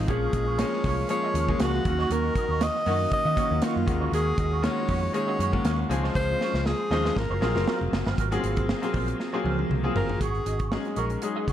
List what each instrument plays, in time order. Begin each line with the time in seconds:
Already playing: grand piano G#3, alto saxophone D#4
0.07 fingered electric bass A#1, grand piano F3 G#3 A#3 C#4 G#4, clean electric guitar C#4 F4 G#4 C#5, alto saxophone G#4, kick, closed hi-hat
0.33 fingered electric bass A#1, clean electric guitar C#4 F4 G#4 D#5, kick, closed hi-hat
0.47 clean electric guitar C#4 F4 G#4 C#5
0.58 grand piano F3 G#3 A#3 C#4 G#4, alto saxophone C#5, snare, closed hi-hat
0.72 muted clean electric guitar stroke, snare
0.84 fingered electric bass C2, clean electric guitar C#4 F4 G#4 C#5, kick, snare, open hi-hat
0.98 muted clean electric guitar stroke
1.09 grand piano F3 G#3 A#3 C#4 G#4, alto saxophone C#5, muted clean electric guitar stroke, closed hi-hat
1.23 clean electric guitar C#4 F4 G#4 D#5
1.34 fingered electric bass D#2, clean electric guitar C#4 F4 G#4 C#5, closed hi-hat
1.48 grand piano F3 G#3 A#3 C#4 G#4, muted clean electric guitar stroke, kick
1.60 fingered electric bass C#2, clean electric guitar C#4 F4 G#4 C#5, alto saxophone F#4, snare, closed hi-hat
1.73 muted clean electric guitar stroke
1.85 fingered electric bass D#2, grand piano D#3 F#3 A#3 C#4 F#4, muted clean electric guitar stroke, kick, closed hi-hat
1.99 clean electric guitar A#3 D#4 F#4 C#5, snare
2.10 fingered electric bass D#2, clean electric guitar A#3 D#4 F#4 C#5, alto saxophone A#4, closed hi-hat
2.35 clean electric guitar A#3 D#4 F#4 D#5, kick, closed hi-hat
2.49 fingered electric bass D#2, clean electric guitar A#3 D#4 F#4 C#5
2.61 alto saxophone D#5, snare, closed hi-hat
2.75 muted clean electric guitar stroke, snare
2.86 fingered electric bass F#2, grand piano D#3 F#3 A#3 C#4 F#4, clean electric guitar A#3 D#4 F#4 C#5, open hi-hat
3.00 muted clean electric guitar stroke
3.11 alto saxophone D#5, muted clean electric guitar stroke, muted fingered electric bass stroke, kick, closed hi-hat
3.25 fingered electric bass D#3, clean electric guitar A#3 D#4 F#4 D#5
3.36 grand piano D#3 F#3 A#3 C#4 F#4, clean electric guitar A#3 D#4 F#4 C#5, kick, closed hi-hat
3.50 fingered electric bass D#2, grand piano D#3 F#3 A#3 C#4 F#4, muted clean electric guitar stroke
3.61 clean electric guitar A#3 D#4 F#4 C#5, alto saxophone F4, snare, closed hi-hat
3.76 fingered electric bass F#2, muted clean electric guitar stroke
3.86 fingered electric bass D#2, grand piano D#3 G#3 A#3 C#4 F#4, muted clean electric guitar stroke, kick, closed hi-hat
4.00 fingered electric bass D2, clean electric guitar C#4 F#4 A#4 C#5
4.12 fingered electric bass D#2, clean electric guitar C#4 F#4 A#4 C#5, alto saxophone G#4, closed hi-hat
4.37 fingered electric bass D#2, clean electric guitar C#4 F#4 A#4 D#5, kick, closed hi-hat
4.51 clean electric guitar C#4 F#4 A#4 C#5
4.62 grand piano D#3 G#3 A#3 C#4 F4, alto saxophone C#5, snare, closed hi-hat
4.69 grand piano F#4
4.77 muted clean electric guitar stroke
4.88 fingered electric bass F2, clean electric guitar C#4 F#4 A#4 C#5, kick, open hi-hat
5.02 muted clean electric guitar stroke
5.13 grand piano D#3 G#3 A#3 C#4 G#4, alto saxophone C#5, muted clean electric guitar stroke, closed hi-hat
5.27 clean electric guitar C#4 F#4 A#4 D#5
5.39 fingered electric bass F#2, clean electric guitar C#4 F#4 A#4 C#5, closed hi-hat
5.52 grand piano D#3 G#3 A#3 C#4 F#4, muted clean electric guitar stroke, kick
5.64 fingered electric bass D#2, clean electric guitar C#4 F#4 A#4 C#5, snare, closed hi-hat
5.78 muted clean electric guitar stroke
5.89 fingered electric bass C#2, grand piano F3 G#3 C4 C#4 G#4, muted clean electric guitar stroke, closed hi-hat
6.03 clean electric guitar G#3 C#4 F4 C5, snare
6.15 fingered electric bass C#2, clean electric guitar G#3 C#4 F4 C5, alto saxophone C5, kick, snare
6.40 clean electric guitar G#3 C#4 F4 C#5, snare
6.54 fingered electric bass C#2, clean electric guitar G#3 C#4 F4 C5, snare
6.66 alto saxophone G#4, snare
6.79 muted clean electric guitar stroke
6.90 fingered electric bass D#2, grand piano F3 G#3 C4 C#4 D#4, clean electric guitar G#3 C#4 F4 C5, snare
7.05 muted clean electric guitar stroke, snare
7.16 fingered electric bass G#1, alto saxophone A#4, muted clean electric guitar stroke, kick, snare
7.30 fingered electric bass F#1, clean electric guitar F#3 C4 F4 C5
7.41 fingered electric bass A#1, grand piano F#3 A#3 C4 F4 G#4, clean electric guitar F#3 C4 F4 A#4, snare
7.54 fingered electric bass F#1, grand piano F#3 A#3 C4 F4 A#4, muted clean electric guitar stroke, snare
7.67 clean electric guitar F#3 C4 F4 A#4, snare
7.81 fingered electric bass F1, muted clean electric guitar stroke
7.92 fingered electric bass F#1, muted clean electric guitar stroke, snare
8.06 fingered electric bass G1, clean electric guitar F#3 C4 F4 A#4, snare
8.18 fingered electric bass G#1, clean electric guitar F#3 C4 F4 A#4, kick, closed hi-hat
8.31 grand piano F#3 A#3 B3 F4 G#4, closed hi-hat
8.38 grand piano C4
8.43 fingered electric bass G#1, clean electric guitar F#3 C4 F4 C5, closed hi-hat
8.57 clean electric guitar F#3 C4 F4 A#4, kick, closed hi-hat
8.69 snare
8.82 grand piano F#3 A#3 C4 F4 G#4, muted clean electric guitar stroke, snare, closed hi-hat
8.94 fingered electric bass A#1, clean electric guitar F#3 C4 F4 A#4, kick, open hi-hat
9.08 muted clean electric guitar stroke, closed hi-hat
9.19 muted clean electric guitar stroke, snare
9.33 grand piano F#3 A#3 C4 F4 G#4, clean electric guitar F#3 C4 F4 C5
9.44 fingered electric bass C#2, clean electric guitar F#3 C4 F4 A#4, high tom
9.59 muted clean electric guitar stroke, high tom
9.70 fingered electric bass C2, muted clean electric guitar stroke, mid tom
9.83 grand piano F#3 A#3 C4 F4 G#4, muted clean electric guitar stroke
9.95 fingered electric bass G1, clean electric guitar F#3 C4 F4 A#4, alto saxophone A#4, floor tom
10.09 muted clean electric guitar stroke, floor tom
10.20 fingered electric bass G#1, clean electric guitar C#4 F#4 G#4 C#5, alto saxophone G#4, kick, closed hi-hat
10.35 closed hi-hat
10.45 fingered electric bass G#1, clean electric guitar C#4 F#4 G#4 D#5, closed hi-hat
10.59 clean electric guitar C#4 F#4 G#4 C#5, kick, closed hi-hat
10.71 grand piano F#3 G#3 C#4 D#4 G#4, snare
10.84 muted clean electric guitar stroke, closed hi-hat
10.96 fingered electric bass A#1, clean electric guitar C#4 F#4 G#4 C#5, alto saxophone A#4, closed hi-hat
11.10 muted clean electric guitar stroke, closed hi-hat
11.22 grand piano F#3 G#3 C#4 D#4 G#4, alto saxophone G#4, muted clean electric guitar stroke, closed hi-hat
11.35 clean electric guitar C#4 F#4 G#4 D#5
11.47 fingered electric bass C#2, clean electric guitar C#4 F#4 G#4 C#5, kick, closed hi-hat